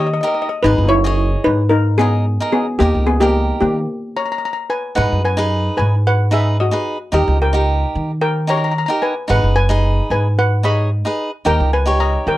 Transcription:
0.00 0.19 D#3 loud
0.07 0.12 D#5 medium
0.14 0.20 D#5 medium
0.21 0.48 D#4 medium
0.21 0.48 G4 medium
0.21 0.48 A#4 medium
0.21 0.26 D#5 medium
0.28 0.33 D#5 medium
0.35 0.41 D#5 medium
0.42 0.48 D#5 medium
0.49 0.57 D#5 medium
0.63 0.75 G#1 loud
0.63 0.89 D#4 medium
0.63 0.89 G#4 medium
0.63 0.91 B4 loud
0.63 0.89 B4 medium
0.78 1.34 F#1 medium
0.89 1.41 E4 medium
0.89 1.40 C#5 loud
1.04 1.62 G#4 medium
1.04 1.63 C#5 medium
1.04 1.61 D#5 medium
1.44 2.35 G#2 loud
1.44 1.69 D#4 medium
1.44 1.70 B4 loud
1.69 1.97 D#4 medium
1.69 1.99 A#4 loud
1.98 2.50 B3 medium
1.98 2.24 D#4 medium
1.98 2.51 G#4 loud
1.98 2.24 G#4 medium
1.98 2.25 A#4 medium
2.40 2.65 D#4 medium
2.40 2.65 G#4 medium
2.40 2.65 A#4 medium
2.52 2.78 B3 medium
2.52 2.81 G#4 medium
2.79 2.92 D#2 loud
2.79 3.05 A#3 medium
2.79 3.05 D#4 medium
2.79 3.08 G4 loud
2.79 3.05 G4 medium
2.79 3.06 A#4 medium
2.94 3.50 C#2 medium
3.06 3.13 B3 medium
3.06 3.13 G#4 medium
3.20 3.59 A#3 medium
3.20 3.78 D#4 medium
3.20 3.59 G4 medium
3.20 3.78 G4 medium
3.20 3.79 A#4 medium
3.61 3.84 D#3 medium
3.61 4.39 A#3 medium
3.61 4.38 G4 medium
4.17 4.23 C#5 medium
4.17 4.24 A#5 medium
4.26 4.31 A#5 medium
4.32 4.37 A#5 medium
4.38 4.44 A#5 medium
4.45 4.52 A#5 medium
4.53 4.61 A#5 medium
4.70 4.95 B4 medium
4.70 4.98 G#5 medium
4.95 5.09 G#2 medium
4.95 5.20 D#4 medium
4.95 5.21 G#4 medium
4.95 5.22 B4 medium
4.95 5.24 F#5 medium
5.12 5.67 F#2 medium
5.25 5.75 B4 medium
5.25 5.76 G#5 medium
5.37 5.94 D#4 medium
5.37 5.94 G#4 medium
5.37 5.95 B4 medium
5.77 6.68 G#2 loud
5.77 5.89 B4 medium
5.77 5.90 G#5 medium
6.07 6.31 B4 medium
6.07 6.31 F#5 medium
6.31 6.56 D#4 medium
6.31 6.56 G#4 medium
6.31 6.58 G#4 medium
6.31 6.57 B4 medium
6.31 6.61 E5 medium
6.60 6.98 F#4 medium
6.60 6.98 D#5 medium
6.71 6.96 D#4 medium
6.71 6.97 G#4 medium
6.71 6.97 B4 medium
7.12 7.24 D#2 medium
7.12 7.37 D#4 medium
7.12 7.37 G4 medium
7.12 7.39 G4 medium
7.12 7.38 A#4 medium
7.12 7.39 D#5 medium
7.28 7.83 C#2 medium
7.42 8.18 A#4 medium
7.42 8.18 G5 medium
7.53 8.10 D#4 medium
7.53 8.11 G4 medium
7.53 8.11 A#4 medium
7.95 8.84 D#3 medium
8.21 8.47 A#4 medium
8.21 8.49 G5 medium
8.47 8.72 D#4 medium
8.47 8.73 G4 medium
8.47 8.73 A#4 medium
8.47 8.56 C#5 medium
8.47 8.56 A#5 medium
8.57 8.63 A#5 medium
8.64 8.70 A#5 medium
8.71 8.77 A#5 medium
8.78 8.85 A#5 medium
8.86 9.13 D#4 medium
8.86 9.14 G4 medium
8.86 9.14 A#4 medium
8.86 8.94 A#5 medium
9.02 9.28 B4 medium
9.02 9.27 G#5 medium
9.28 9.41 G#1 loud
9.28 9.53 D#4 medium
9.28 9.54 G#4 medium
9.28 9.54 B4 medium
9.28 9.58 F#5 medium
9.43 9.99 F#1 medium
9.56 10.06 B4 medium
9.56 10.10 G#5 loud
9.69 10.26 D#4 medium
9.69 10.27 G#4 medium
9.69 10.27 B4 medium
10.10 11.00 G#2 loud
10.10 10.24 B4 medium
10.10 10.23 G#5 medium
10.39 10.63 B4 medium
10.39 10.66 F#5 loud
10.63 10.88 D#4 medium
10.63 10.89 G#4 medium
10.63 10.89 C#5 medium
10.63 11.42 D#5 medium
10.63 11.42 B5 loud
11.05 11.30 D#4 medium
11.05 11.30 G#4 medium
11.05 11.30 B4 medium
11.45 11.57 D#2 loud
11.45 11.70 D#4 medium
11.45 11.70 G4 medium
11.45 11.71 A#4 medium
11.45 11.74 G5 medium
11.60 12.16 C#2 medium
11.73 11.86 B4 medium
11.73 11.85 G#5 medium
11.86 12.38 D#4 medium
11.86 12.38 G4 medium
11.86 12.38 C#5 medium
12.00 12.25 D#5 medium
12.00 12.28 A#5 loud
12.27 12.38 D#3 loud
12.27 12.38 A#4 medium
12.27 12.38 G5 medium

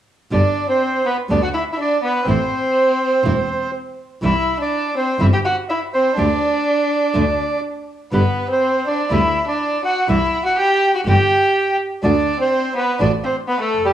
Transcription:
0.31 0.52 G1 medium
0.31 0.40 B2 medium
0.31 0.41 D3 medium
0.31 0.41 G3 medium
0.31 0.41 B3 medium
0.31 0.67 D4 medium
0.31 0.41 G4 medium
0.31 0.67 D5 medium
0.69 1.03 C4 soft
0.69 1.07 C5 medium
1.06 1.17 B3 soft
1.06 1.17 B4 medium
1.29 1.50 D2 medium
1.29 1.39 B2 soft
1.29 1.39 D3 medium
1.29 1.39 G3 medium
1.29 1.39 B3 medium
1.29 1.41 D4 medium
1.29 1.39 G4 medium
1.29 1.42 D5 medium
1.42 1.48 F#4 medium
1.42 1.49 F#5 medium
1.54 1.62 E4 soft
1.54 1.64 E5 medium
1.73 1.78 E4 soft
1.73 1.79 E5 soft
1.79 2.01 D4 soft
1.79 2.02 D5 medium
2.03 2.26 B3 soft
2.03 2.27 B4 medium
2.26 2.47 A1 medium
2.26 2.36 E3 medium
2.26 2.37 A3 medium
2.26 3.69 C4 soft
2.26 2.37 C4 medium
2.26 2.37 E4 medium
2.26 3.71 C5 medium
3.24 3.45 E1 medium
3.24 3.34 E3 medium
3.24 3.34 A3 medium
3.24 3.34 C4 medium
3.24 3.34 E4 medium
4.22 4.43 C2 medium
4.22 4.31 C3 medium
4.22 4.32 E3 medium
4.22 4.32 G3 medium
4.22 4.32 C4 medium
4.22 4.32 E4 medium
4.22 4.57 E4 medium
4.22 4.58 E5 medium
4.60 4.94 D4 medium
4.60 4.94 D5 medium
4.97 5.19 C4 soft
4.97 5.22 C5 medium
5.19 5.40 G1 medium
5.19 5.29 C3 medium
5.19 5.29 E3 medium
5.19 5.29 G3 medium
5.19 5.29 C4 medium
5.19 5.26 E4 soft
5.19 5.29 E4 medium
5.19 5.27 E5 medium
5.33 5.38 G4 medium
5.33 5.39 G5 medium
5.45 5.56 F#4 medium
5.45 5.56 F#5 medium
5.69 5.80 E4 medium
5.69 5.80 E5 medium
5.94 6.16 C4 soft
5.94 6.18 C5 medium
6.17 6.38 D2 medium
6.17 6.26 D3 medium
6.17 6.26 A3 medium
6.17 7.60 D4 medium
6.17 6.27 D4 medium
6.17 6.27 G4 medium
6.17 7.60 D5 medium
7.14 7.35 D2 medium
7.14 7.23 D3 medium
7.14 7.24 A3 medium
7.14 7.24 D4 medium
7.14 7.24 F#4 medium
8.12 8.33 G1 medium
8.12 8.22 B2 medium
8.12 8.22 D3 medium
8.12 8.22 G3 medium
8.12 8.47 B3 soft
8.12 8.22 B3 medium
8.12 8.22 G4 medium
8.12 8.47 B4 soft
8.50 8.84 C4 soft
8.50 8.89 C5 medium
8.87 9.09 D4 medium
8.87 9.12 D5 medium
9.11 9.31 D2 medium
9.11 9.20 B2 medium
9.11 9.20 D3 medium
9.11 9.20 G3 medium
9.11 9.20 B3 medium
9.11 9.45 E4 medium
9.11 9.20 G4 medium
9.11 9.45 E5 medium
9.48 9.82 D4 medium
9.48 9.82 D5 medium
9.84 10.07 F#4 medium
9.84 10.07 F#5 medium
10.08 10.29 C2 medium
10.08 10.17 C3 medium
10.08 10.18 E3 medium
10.08 10.18 G3 medium
10.08 10.18 C4 medium
10.08 10.43 E4 medium
10.08 10.18 E4 medium
10.08 10.43 E5 medium
10.46 10.57 F#4 medium
10.46 10.57 F#5 medium
10.58 10.92 G4 medium
10.58 10.92 G5 medium
10.95 11.00 F#4 soft
10.95 11.01 F#5 medium
11.05 11.26 G1 medium
11.05 11.15 C3 medium
11.05 11.15 E3 medium
11.05 11.16 G3 medium
11.05 11.16 C4 medium
11.05 11.16 E4 medium
11.05 11.76 G4 medium
11.05 11.77 G5 medium
12.03 12.24 D2 medium
12.03 12.12 D3 medium
12.03 12.13 A3 medium
12.03 12.37 D4 medium
12.03 12.13 D4 medium
12.03 12.13 F#4 medium
12.03 12.38 D5 medium
12.40 12.74 C4 medium
12.40 12.74 C5 medium
12.75 12.98 B3 medium
12.75 13.00 B4 medium
13.00 13.21 A1 medium
13.00 13.09 D3 medium
13.00 13.10 A3 medium
13.00 13.11 D4 medium
13.00 13.10 D4 medium
13.00 13.10 F#4 medium
13.00 13.12 D5 medium
13.24 13.35 C4 soft
13.24 13.36 C5 medium
13.48 13.60 B3 medium
13.48 13.61 B4 medium
13.60 13.84 A3 soft
13.60 13.86 A4 medium
13.74 13.93 F1 soft
13.85 13.93 G3 medium
13.85 13.93 G4 medium

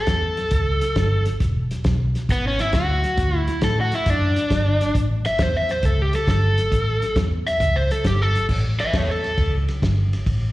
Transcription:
0.00 1.24 A4 medium
0.07 0.37 E2 medium
0.07 kick medium
0.07 snare loud
0.07 closed hi-hat medium
0.37 snare soft
0.37 closed hi-hat medium
0.51 0.81 C#2 medium
0.51 kick medium
0.51 closed hi-hat medium
0.81 snare soft
0.81 closed hi-hat medium
0.96 1.26 G1 medium
0.96 kick medium
0.96 snare loud
0.96 closed hi-hat medium
1.25 snare soft
1.25 closed hi-hat medium
1.40 1.70 E1 medium
1.40 kick medium
1.40 snare soft
1.40 closed hi-hat medium
1.71 snare soft
1.71 closed hi-hat medium
1.84 2.14 B1 medium
1.84 kick medium
1.84 snare loud
1.84 closed hi-hat medium
2.15 snare soft
2.15 closed hi-hat medium
2.29 2.59 G#1 medium
2.29 2.45 B3 medium
2.29 kick medium
2.29 snare soft
2.29 closed hi-hat medium
2.47 2.60 C#4 medium
2.59 2.74 E4 medium
2.59 snare soft
2.59 closed hi-hat medium
2.73 3.03 D2 medium
2.73 3.38 F#4 medium
2.73 kick medium
2.73 snare medium
2.73 closed hi-hat medium
3.04 snare soft
3.04 closed hi-hat medium
3.17 3.47 D2 medium
3.17 kick medium
3.17 snare soft
3.17 closed hi-hat medium
3.38 3.60 E4 medium
3.47 snare soft
3.47 closed hi-hat medium
3.61 3.91 A2 medium
3.61 3.78 A4 loud
3.61 kick medium
3.61 snare loud
3.61 closed hi-hat medium
3.81 3.93 F#4 medium
3.92 4.10 E4 medium
3.92 snare soft
3.92 closed hi-hat medium
4.06 4.36 F#2 loud
4.06 4.94 D4 medium
4.06 kick loud
4.06 snare soft
4.06 closed hi-hat medium
4.36 snare soft
4.36 closed hi-hat medium
4.50 4.80 G1 loud
4.50 kick medium
4.50 snare medium
4.50 closed hi-hat medium
4.81 snare soft
4.81 closed hi-hat medium
4.95 5.24 A1 medium
4.95 kick medium
4.95 closed hi-hat medium
5.25 5.40 E5 loud
5.25 snare soft
5.25 closed hi-hat medium
5.39 5.69 E2 loud
5.39 5.55 C5 loud
5.39 kick medium
5.39 snare loud
5.39 closed hi-hat medium
5.57 5.70 E5 medium
5.69 5.85 C5 medium
5.69 snare soft
5.69 closed hi-hat medium
5.83 6.13 C#2 loud
5.83 6.02 A4 medium
5.83 kick medium
5.83 closed hi-hat medium
6.02 6.14 G4 medium
6.13 6.29 A4 loud
6.13 snare soft
6.13 closed hi-hat medium
6.27 6.57 G1 loud
6.27 7.16 A4 loud
6.27 kick medium
6.27 snare loud
6.27 closed hi-hat medium
6.58 snare soft
6.58 closed hi-hat medium
6.71 7.01 A1 medium
6.71 kick medium
6.71 snare soft
6.71 closed hi-hat medium
7.02 snare soft
7.02 closed hi-hat medium
7.16 7.46 E2 loud
7.16 kick medium
7.16 snare loud
7.16 closed hi-hat medium
7.47 7.76 E5 loud
7.47 snare soft
7.47 closed hi-hat medium
7.60 7.90 C#2 loud
7.60 kick medium
7.60 snare soft
7.60 closed hi-hat medium
7.76 7.91 C5 loud
7.91 8.07 A4 medium
7.91 snare soft
7.91 closed hi-hat medium
8.05 8.34 G1 loud
8.05 8.22 G4 medium
8.05 kick medium
8.05 snare loud
8.05 closed hi-hat medium
8.22 8.45 A4 loud
8.35 snare soft
8.35 closed hi-hat medium
8.49 8.79 A1 medium
8.49 kick medium
8.49 snare soft
8.49 crash loud
8.80 8.96 B4 medium
8.80 8.97 E5 medium
8.80 snare soft
8.80 ride medium
8.93 9.23 E2 medium
8.93 9.09 A4 medium
8.93 9.10 C#5 medium
8.93 kick medium
8.93 snare loud
8.93 ride medium
9.11 9.53 A4 medium
9.24 snare soft
9.24 ride medium
9.38 9.67 C#2 medium
9.38 kick medium
9.38 snare soft
9.38 ride medium
9.68 snare soft
9.68 ride medium
9.82 10.12 G1 medium
9.82 kick medium
9.82 snare loud
9.82 ride medium
10.13 snare soft
10.13 ride medium
10.26 10.52 A1 medium
10.26 kick medium
10.26 ride medium

